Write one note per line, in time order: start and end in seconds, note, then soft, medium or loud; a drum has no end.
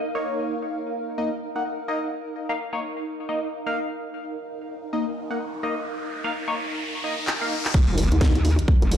0.00 6.81 D#4 medium
0.00 6.80 A#4 medium
0.00 6.80 F5 medium
0.15 1.16 A#3 medium
0.15 1.16 D#4 medium
0.15 1.16 C#5 loud
1.18 1.29 A#3 medium
1.18 1.29 D#4 medium
1.18 1.29 D#5 medium
1.56 1.63 A#3 medium
1.56 1.63 D#4 medium
1.56 1.63 F#5 medium
1.88 1.99 A#3 medium
1.88 1.99 D#4 medium
1.88 1.99 D#5 loud
2.49 2.57 A#3 medium
2.49 2.57 D#4 medium
2.49 2.57 F5 loud
2.73 2.80 A#3 medium
2.73 2.80 D#4 medium
2.73 2.80 C#5 medium
3.29 3.40 A#3 medium
3.29 3.40 D#4 medium
3.29 3.40 D#5 medium
3.66 3.79 A#3 medium
3.66 3.79 D#4 medium
3.66 3.79 F5 loud
3.99 riser medium
4.93 5.04 A#3 medium
4.93 5.04 D#4 medium
4.93 5.04 D#5 medium
5.31 5.38 A#3 medium
5.31 5.38 D#4 medium
5.31 5.38 F#5 medium
5.63 5.74 A#3 medium
5.63 5.74 D#4 medium
5.63 5.74 D#5 loud
6.24 6.32 A#3 medium
6.24 6.32 D#4 medium
6.24 6.32 F5 loud
6.48 6.55 A#3 medium
6.48 6.55 D#4 medium
6.48 6.55 C#5 loud
7.04 7.15 A#3 medium
7.04 7.15 D#4 medium
7.04 7.15 D#5 medium
7.27 clap loud
7.41 7.54 A#3 medium
7.41 7.54 D#4 medium
7.41 7.54 F5 loud
7.65 clap medium
7.74 8.10 D#1 loud
7.74 8.97 D#4 medium
7.74 kick loud
7.74 crash loud
7.74 impact medium
7.98 open hi-hat loud
8.05 8.97 A#4 medium
8.12 8.33 D#2 medium
8.12 closed hi-hat medium
8.21 kick loud
8.21 snare loud
8.35 8.56 D#2 loud
8.35 closed hi-hat medium
8.45 open hi-hat loud
8.59 closed hi-hat medium
8.68 kick loud
8.82 8.97 F#1 loud
8.82 closed hi-hat medium
8.92 open hi-hat loud